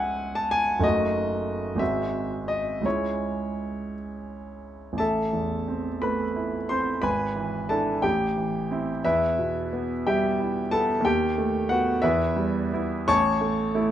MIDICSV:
0, 0, Header, 1, 2, 480
1, 0, Start_track
1, 0, Key_signature, 4, "minor"
1, 0, Tempo, 643777
1, 623, Time_signature, 6, 3, 24, 8
1, 1595, Tempo, 708383
1, 3528, Key_signature, 0, "minor"
1, 3995, Tempo, 672646
1, 7355, Tempo, 658617
1, 8795, Tempo, 716846
1, 9275, Tempo, 661521
1, 9878, End_track
2, 0, Start_track
2, 0, Title_t, "Grand piano"
2, 0, Program_c, 0, 0
2, 0, Control_c, 0, 64, 127
2, 0, Note_on_c, 0, 37, 37
2, 0, Note_on_c, 0, 56, 33
2, 0, Note_on_c, 0, 61, 31
2, 0, Note_on_c, 0, 68, 30
2, 0, Note_on_c, 0, 76, 62
2, 0, Note_on_c, 0, 78, 62
2, 0, Note_on_c, 0, 80, 66
2, 263, Note_off_c, 0, 78, 0
2, 263, Note_on_c, 0, 81, 69
2, 382, Note_off_c, 0, 80, 0
2, 382, Note_on_c, 0, 80, 83
2, 384, Note_off_c, 0, 81, 0
2, 571, Note_off_c, 0, 37, 0
2, 573, Note_off_c, 0, 56, 0
2, 578, Note_off_c, 0, 61, 0
2, 584, Note_off_c, 0, 68, 0
2, 593, Note_on_c, 0, 30, 43
2, 601, Note_on_c, 0, 57, 38
2, 607, Note_on_c, 0, 63, 37
2, 615, Note_on_c, 0, 66, 36
2, 620, Note_off_c, 0, 80, 0
2, 623, Note_on_c, 0, 75, 75
2, 636, Control_c, 0, 64, 0
2, 637, Note_off_c, 0, 76, 0
2, 770, Control_c, 0, 64, 127
2, 1306, Note_off_c, 0, 30, 0
2, 1307, Note_on_c, 0, 32, 41
2, 1310, Note_off_c, 0, 57, 0
2, 1314, Note_off_c, 0, 63, 0
2, 1317, Note_off_c, 0, 66, 0
2, 1319, Note_on_c, 0, 56, 35
2, 1327, Note_on_c, 0, 60, 34
2, 1337, Note_on_c, 0, 66, 33
2, 1337, Note_on_c, 0, 76, 65
2, 1343, Note_off_c, 0, 75, 0
2, 1357, Control_c, 0, 64, 0
2, 1490, Control_c, 0, 64, 127
2, 1826, Note_off_c, 0, 76, 0
2, 1826, Note_on_c, 0, 75, 61
2, 2034, Note_off_c, 0, 32, 0
2, 2040, Note_off_c, 0, 56, 0
2, 2043, Note_off_c, 0, 60, 0
2, 2048, Note_off_c, 0, 66, 0
2, 2053, Note_on_c, 0, 37, 35
2, 2062, Note_on_c, 0, 56, 28
2, 2071, Note_off_c, 0, 75, 0
2, 2073, Note_on_c, 0, 61, 30
2, 2081, Note_on_c, 0, 73, 51
2, 2083, Note_on_c, 0, 64, 28
2, 2088, Control_c, 0, 64, 0
2, 2195, Control_c, 0, 64, 127
2, 2810, Note_off_c, 0, 73, 0
2, 3485, Note_on_c, 0, 33, 37
2, 3491, Note_off_c, 0, 37, 0
2, 3496, Note_off_c, 0, 56, 0
2, 3501, Note_off_c, 0, 61, 0
2, 3506, Note_off_c, 0, 64, 0
2, 3519, Note_on_c, 0, 81, 64
2, 3531, Note_on_c, 0, 69, 47
2, 3531, Note_on_c, 0, 76, 46
2, 3541, Control_c, 0, 64, 0
2, 3667, Control_c, 0, 64, 127
2, 3755, Note_on_c, 0, 40, 26
2, 3994, Note_on_c, 0, 60, 28
2, 4139, Note_off_c, 0, 40, 0
2, 4212, Note_off_c, 0, 69, 0
2, 4212, Note_off_c, 0, 76, 0
2, 4234, Note_off_c, 0, 81, 0
2, 4234, Note_on_c, 0, 83, 57
2, 4236, Note_on_c, 0, 57, 32
2, 4244, Note_on_c, 0, 71, 46
2, 4384, Note_off_c, 0, 60, 0
2, 4480, Note_on_c, 0, 64, 30
2, 4621, Note_off_c, 0, 57, 0
2, 4692, Note_off_c, 0, 71, 0
2, 4716, Note_off_c, 0, 83, 0
2, 4716, Note_on_c, 0, 84, 68
2, 4724, Note_on_c, 0, 72, 49
2, 4729, Note_on_c, 0, 60, 35
2, 4860, Note_off_c, 0, 64, 0
2, 4904, Note_off_c, 0, 33, 0
2, 4942, Note_off_c, 0, 72, 0
2, 4947, Note_on_c, 0, 83, 66
2, 4954, Note_off_c, 0, 84, 0
2, 4956, Note_on_c, 0, 32, 40
2, 4959, Note_on_c, 0, 71, 52
2, 4960, Note_off_c, 0, 60, 0
2, 4960, Note_on_c, 0, 80, 46
2, 4966, Control_c, 0, 64, 0
2, 5107, Control_c, 0, 64, 127
2, 5191, Note_on_c, 0, 52, 32
2, 5405, Note_off_c, 0, 71, 0
2, 5406, Note_off_c, 0, 80, 0
2, 5428, Note_off_c, 0, 83, 0
2, 5430, Note_on_c, 0, 81, 61
2, 5435, Note_on_c, 0, 69, 45
2, 5437, Note_on_c, 0, 62, 32
2, 5438, Note_on_c, 0, 64, 33
2, 5576, Note_off_c, 0, 52, 0
2, 5652, Note_off_c, 0, 62, 0
2, 5652, Note_off_c, 0, 64, 0
2, 5653, Note_off_c, 0, 32, 0
2, 5658, Note_off_c, 0, 69, 0
2, 5666, Note_on_c, 0, 79, 61
2, 5672, Note_off_c, 0, 81, 0
2, 5673, Note_on_c, 0, 33, 41
2, 5673, Note_on_c, 0, 67, 47
2, 5687, Control_c, 0, 64, 0
2, 5826, Control_c, 0, 64, 127
2, 5915, Note_on_c, 0, 52, 29
2, 6156, Note_on_c, 0, 60, 31
2, 6163, Note_on_c, 0, 64, 38
2, 6298, Note_off_c, 0, 52, 0
2, 6365, Note_off_c, 0, 67, 0
2, 6370, Note_off_c, 0, 60, 0
2, 6372, Note_off_c, 0, 33, 0
2, 6374, Note_off_c, 0, 64, 0
2, 6390, Note_off_c, 0, 79, 0
2, 6395, Note_on_c, 0, 76, 71
2, 6399, Note_on_c, 0, 40, 43
2, 6400, Note_on_c, 0, 71, 48
2, 6401, Note_on_c, 0, 64, 51
2, 6405, Control_c, 0, 64, 0
2, 6512, Control_c, 0, 64, 127
2, 6640, Note_on_c, 0, 47, 30
2, 6883, Note_on_c, 0, 59, 38
2, 7025, Note_off_c, 0, 47, 0
2, 7093, Note_off_c, 0, 64, 0
2, 7093, Note_off_c, 0, 71, 0
2, 7119, Note_off_c, 0, 76, 0
2, 7124, Note_on_c, 0, 79, 62
2, 7126, Note_on_c, 0, 67, 50
2, 7129, Note_on_c, 0, 55, 36
2, 7129, Note_on_c, 0, 76, 52
2, 7264, Note_off_c, 0, 59, 0
2, 7361, Note_on_c, 0, 64, 38
2, 7504, Note_off_c, 0, 55, 0
2, 7570, Note_off_c, 0, 67, 0
2, 7571, Note_off_c, 0, 76, 0
2, 7591, Note_on_c, 0, 81, 75
2, 7597, Note_off_c, 0, 79, 0
2, 7599, Note_on_c, 0, 59, 40
2, 7600, Note_on_c, 0, 69, 56
2, 7741, Note_off_c, 0, 64, 0
2, 7802, Note_on_c, 0, 39, 50
2, 7808, Note_off_c, 0, 40, 0
2, 7820, Note_off_c, 0, 69, 0
2, 7832, Note_off_c, 0, 81, 0
2, 7834, Note_on_c, 0, 79, 68
2, 7836, Note_off_c, 0, 59, 0
2, 7839, Note_on_c, 0, 67, 57
2, 7848, Control_c, 0, 64, 0
2, 7989, Control_c, 0, 64, 127
2, 8076, Note_on_c, 0, 57, 40
2, 8285, Note_off_c, 0, 67, 0
2, 8304, Note_on_c, 0, 78, 68
2, 8312, Note_off_c, 0, 79, 0
2, 8318, Note_on_c, 0, 59, 36
2, 8318, Note_on_c, 0, 66, 52
2, 8454, Note_off_c, 0, 57, 0
2, 8510, Note_off_c, 0, 39, 0
2, 8528, Note_off_c, 0, 59, 0
2, 8535, Note_off_c, 0, 66, 0
2, 8541, Note_on_c, 0, 76, 73
2, 8544, Note_off_c, 0, 78, 0
2, 8551, Note_on_c, 0, 40, 51
2, 8551, Note_on_c, 0, 64, 55
2, 8552, Note_on_c, 0, 71, 51
2, 8560, Control_c, 0, 64, 0
2, 8668, Control_c, 0, 64, 127
2, 8793, Note_on_c, 0, 55, 41
2, 9032, Note_off_c, 0, 64, 0
2, 9040, Note_on_c, 0, 59, 41
2, 9042, Note_on_c, 0, 64, 45
2, 9181, Note_off_c, 0, 55, 0
2, 9250, Note_off_c, 0, 71, 0
2, 9253, Note_off_c, 0, 59, 0
2, 9254, Note_off_c, 0, 64, 0
2, 9255, Note_off_c, 0, 40, 0
2, 9272, Note_off_c, 0, 76, 0
2, 9272, Note_on_c, 0, 85, 97
2, 9275, Note_on_c, 0, 73, 65
2, 9276, Note_on_c, 0, 81, 69
2, 9278, Note_on_c, 0, 33, 52
2, 9289, Control_c, 0, 64, 0
2, 9429, Control_c, 0, 64, 127
2, 9512, Note_on_c, 0, 57, 41
2, 9746, Note_off_c, 0, 57, 0
2, 9757, Note_on_c, 0, 57, 42
2, 9763, Note_on_c, 0, 64, 43
2, 9878, Note_off_c, 0, 33, 0
2, 9878, Note_off_c, 0, 57, 0
2, 9878, Note_off_c, 0, 64, 0
2, 9878, Note_off_c, 0, 73, 0
2, 9878, Note_off_c, 0, 81, 0
2, 9878, Note_off_c, 0, 85, 0
2, 9878, End_track
0, 0, End_of_file